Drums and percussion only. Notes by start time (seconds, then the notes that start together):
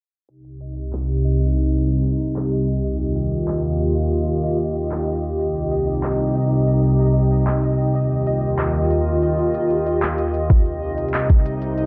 0.29 closed hi-hat
0.45 closed hi-hat
0.61 closed hi-hat
0.77 closed hi-hat
0.93 clap
1.09 closed hi-hat
1.24 closed hi-hat
1.40 closed hi-hat
1.56 closed hi-hat
1.72 closed hi-hat
1.88 closed hi-hat
2.04 closed hi-hat
2.20 closed hi-hat
2.36 clap
2.52 closed hi-hat
2.68 closed hi-hat
2.84 closed hi-hat
3.00 closed hi-hat
3.16 closed hi-hat
3.32 closed hi-hat
3.48 clap
3.64 closed hi-hat
3.72 closed hi-hat
3.96 closed hi-hat
4.12 closed hi-hat
4.28 closed hi-hat
4.44 closed hi-hat
4.46 closed hi-hat
4.52 closed hi-hat
4.54 closed hi-hat
4.57 closed hi-hat
4.60 closed hi-hat
4.75 closed hi-hat
4.91 clap
5.07 closed hi-hat
5.23 closed hi-hat
5.39 closed hi-hat
5.55 closed hi-hat
5.71 closed hi-hat
5.87 closed hi-hat
6.03 clap, closed hi-hat
6.19 closed hi-hat
6.35 closed hi-hat
6.51 closed hi-hat
6.67 closed hi-hat
6.83 closed hi-hat
6.99 closed hi-hat
7.07 closed hi-hat
7.31 closed hi-hat
7.47 clap, closed hi-hat
7.63 closed hi-hat
7.79 closed hi-hat
7.95 closed hi-hat
8.11 closed hi-hat
8.27 closed hi-hat
8.59 clap, closed hi-hat
8.75 closed hi-hat
8.91 closed hi-hat
9.23 closed hi-hat
9.38 closed hi-hat
9.54 closed hi-hat
9.70 closed hi-hat
9.86 closed hi-hat
10.02 clap, closed hi-hat
10.18 closed hi-hat
10.34 closed hi-hat
10.50 kick, closed hi-hat
10.66 closed hi-hat
10.98 closed hi-hat
11.08 closed hi-hat
11.14 clap, closed hi-hat
11.19 closed hi-hat
11.30 kick, closed hi-hat
11.46 closed hi-hat
11.62 closed hi-hat
11.78 closed hi-hat